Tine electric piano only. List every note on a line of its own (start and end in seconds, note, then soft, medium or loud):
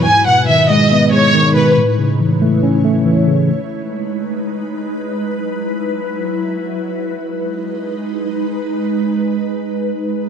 0.06 1.13 G#2 medium
0.27 1.35 B2 medium
0.49 1.33 D#3 medium
0.70 1.12 G#3 medium
0.92 1.77 B3 medium
1.13 1.77 G#3 medium
1.34 1.77 D#3 loud
1.56 1.77 B2 medium
1.77 2.85 A2 medium
1.99 3.06 C#3 medium
2.20 3.05 E3 medium
2.42 2.83 A3 loud
2.63 3.49 C#4 medium
2.84 3.49 A3 medium
3.06 3.49 E3 medium
3.27 3.49 C#3 medium